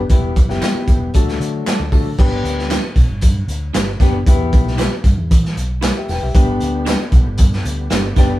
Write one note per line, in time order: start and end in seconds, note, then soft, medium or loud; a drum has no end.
0.00 1.10 G3 soft
0.00 1.10 B3 medium
0.08 0.43 E1 loud
0.08 1.12 E3 medium
0.08 0.32 B3 medium
0.08 0.32 E4 medium
0.08 0.32 G4 medium
0.08 0.32 B4 medium
0.08 kick loud
0.08 closed hi-hat medium
0.08 tambourine soft
0.36 kick medium
0.36 closed hi-hat medium
0.36 tambourine soft
0.48 0.59 F#1 medium
0.48 1.08 B3 medium
0.48 1.08 E4 medium
0.48 1.08 G4 medium
0.48 1.08 B4 medium
0.48 snare soft
0.61 0.73 E4 medium
0.61 0.74 G4 medium
0.61 0.74 B4 medium
0.61 snare loud
0.61 clap medium
0.61 closed hi-hat medium
0.61 tambourine medium
0.74 muted fingered electric bass stroke soft
0.87 1.10 E1 medium
0.87 kick medium
0.87 closed hi-hat medium
0.87 tambourine soft
1.13 1.36 D2 medium
1.13 2.17 D3 medium
1.13 2.17 F#3 medium
1.13 2.17 A3 medium
1.13 1.77 A3 medium
1.13 1.77 D4 medium
1.13 1.77 F#4 medium
1.13 1.77 A4 loud
1.13 kick medium
1.13 closed hi-hat loud
1.13 tambourine medium
1.28 snare soft
1.40 1.62 D3 medium
1.40 closed hi-hat medium
1.40 tambourine soft
1.66 1.78 F#4 medium
1.66 1.78 A4 medium
1.66 1.79 D5 medium
1.66 muted fingered electric bass stroke soft
1.66 snare loud
1.66 clap medium
1.66 closed hi-hat medium
1.66 tambourine medium
1.80 1.90 D2 medium
1.92 2.14 D3 loud
1.92 2.07 A3 medium
1.92 2.07 D4 medium
1.92 2.07 F#4 medium
1.92 2.07 A4 loud
1.92 kick medium
1.92 open hi-hat soft
1.92 tambourine medium
2.18 2.40 G1 loud
2.18 2.78 B3 medium
2.18 2.78 D4 medium
2.18 2.78 G4 medium
2.18 2.77 B4 medium
2.18 kick loud
2.18 crash medium
2.18 tambourine soft
2.44 2.77 D2 medium
2.44 closed hi-hat medium
2.44 tambourine soft
2.59 snare soft
2.70 2.82 D4 medium
2.70 2.82 G4 medium
2.70 2.83 B4 medium
2.70 snare loud
2.70 clap loud
2.70 closed hi-hat medium
2.70 tambourine medium
2.96 3.07 B1 medium
2.96 kick medium
2.96 closed hi-hat medium
2.96 tambourine soft
3.08 3.24 G1 medium
3.21 3.44 G2 loud
3.21 kick medium
3.21 closed hi-hat loud
3.21 tambourine medium
3.48 3.70 D2 medium
3.48 closed hi-hat medium
3.48 tambourine soft
3.74 3.96 G1 medium
3.74 3.86 D4 medium
3.74 3.86 G4 medium
3.74 3.87 B4 medium
3.74 snare loud
3.74 clap medium
3.74 closed hi-hat medium
3.74 tambourine medium
4.00 4.22 F#1 medium
4.00 4.15 B3 loud
4.00 4.09 D4 medium
4.00 4.15 D4 medium
4.00 4.15 G4 medium
4.00 4.10 G4 medium
4.00 4.16 B4 loud
4.00 4.10 B4 medium
4.00 kick medium
4.00 snare soft
4.00 closed hi-hat medium
4.00 tambourine medium
4.27 4.55 E2 loud
4.27 4.86 B3 medium
4.27 4.86 E4 medium
4.27 4.86 G4 medium
4.27 4.86 B4 loud
4.27 kick loud
4.27 closed hi-hat loud
4.27 tambourine soft
4.53 4.86 B1 medium
4.53 kick loud
4.53 closed hi-hat medium
4.53 tambourine soft
4.67 snare soft
4.78 4.90 E4 medium
4.78 4.90 G4 medium
4.78 4.91 B4 loud
4.78 snare loud
4.78 clap medium
4.78 closed hi-hat medium
4.78 tambourine medium
5.04 5.15 G2 medium
5.04 kick medium
5.04 closed hi-hat medium
5.04 tambourine soft
5.18 5.29 E2 medium
5.31 5.53 E3 medium
5.31 kick medium
5.31 closed hi-hat loud
5.31 tambourine medium
5.45 snare soft
5.57 5.90 B1 medium
5.57 closed hi-hat medium
5.57 tambourine soft
5.81 5.94 E4 medium
5.81 5.94 G4 medium
5.81 5.95 B4 medium
5.81 snare loud
5.81 clap loud
5.81 closed hi-hat medium
5.81 tambourine medium
5.97 6.09 G4 medium
5.97 6.09 E5 medium
6.08 6.20 E1 medium
6.08 6.22 B4 medium
6.08 6.22 G5 medium
6.08 snare soft
6.08 open hi-hat medium
6.08 tambourine medium
6.22 6.33 B1 medium
6.22 6.34 G4 medium
6.22 6.47 E5 medium
6.35 6.57 G1 loud
6.35 8.39 D3 medium
6.35 8.39 G3 medium
6.35 8.39 B3 medium
6.35 6.94 B3 medium
6.35 6.94 D4 medium
6.35 6.94 G4 medium
6.35 6.94 B4 loud
6.35 kick loud
6.35 closed hi-hat loud
6.60 6.95 D2 medium
6.60 closed hi-hat medium
6.60 tambourine soft
6.85 6.98 D4 medium
6.85 6.99 G4 loud
6.85 6.99 B4 loud
6.85 snare loud
6.85 clap medium
6.85 closed hi-hat medium
6.85 tambourine medium
7.12 7.23 B1 medium
7.12 kick medium
7.12 closed hi-hat medium
7.12 tambourine medium
7.26 7.40 G1 medium
7.38 7.61 G2 loud
7.38 kick loud
7.38 closed hi-hat loud
7.38 tambourine medium
7.53 snare soft
7.65 7.87 D2 medium
7.65 closed hi-hat medium
7.65 tambourine soft
7.90 8.13 G1 medium
7.90 8.02 D4 medium
7.90 8.03 G4 medium
7.90 8.03 B4 medium
7.90 snare loud
7.90 clap medium
7.90 closed hi-hat medium
7.90 tambourine medium
8.16 8.39 F#1 loud
8.16 8.32 B3 medium
8.16 8.26 D4 medium
8.16 8.32 D4 medium
8.16 8.26 G4 medium
8.16 8.32 G4 medium
8.16 8.27 B4 medium
8.16 8.32 D5 loud
8.16 kick medium
8.16 snare soft
8.16 closed hi-hat medium
8.16 tambourine medium